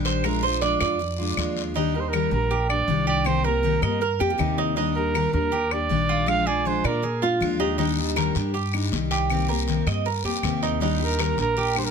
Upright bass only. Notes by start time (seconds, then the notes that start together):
Already playing: A#1
0.81 F2
1.37 D#2
2.31 A#1
2.88 C2
3.82 G2
4.20 F2
4.39 D#2
5.33 D#2
5.90 A#1
6.84 A#2
7.41 D#2
8.35 G2
8.92 C2
9.87 G2
10.24 F2
10.43 D#2
11.38 A#1